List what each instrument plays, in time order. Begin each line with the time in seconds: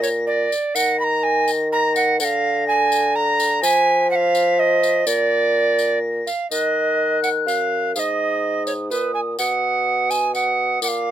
Already playing: bassoon A#2, flute A#6
0.02 recorder C#5, tambourine
0.27 recorder D5, flute A#6
0.52 tambourine
0.75 bassoon D#3, recorder F#5, flute A#6, tambourine
1.00 recorder B5
1.04 recorder A#5
1.23 recorder G#5
1.48 tambourine
1.72 recorder A#5, flute A#6
1.96 recorder F#5, tambourine
2.20 bassoon D3, recorder F#5, flute A#6, tambourine
2.25 recorder F5
2.68 recorder G#5
2.92 tambourine
3.16 recorder A#5, flute A#6
3.40 tambourine
3.63 bassoon F3, recorder G#5, flute B6, tambourine
4.11 recorder F#5, flute B6
4.15 recorder F5
4.35 tambourine
4.59 recorder D#5
4.83 tambourine
5.07 bassoon A#2, recorder D5, flute A#6, tambourine
5.79 tambourine
6.27 recorder F5, tambourine
6.50 bassoon D#3, recorder D#5, flute F#6, tambourine
7.23 recorder F#5, tambourine
7.47 bassoon F#2, recorder F5, tambourine
7.95 bassoon G#2, recorder F5, flute D#6, tambourine
7.99 recorder D#5
8.67 recorder C#5, tambourine
8.90 bassoon A#2, recorder B4, flute D#6, tambourine
9.14 recorder G#5
9.39 bassoon B2, recorder F#5, flute D#6, tambourine
10.10 recorder G#5, tambourine
10.34 recorder F#5, flute D#6, tambourine
10.82 bassoon A#2, recorder F#5, flute D6, tambourine
10.88 recorder F5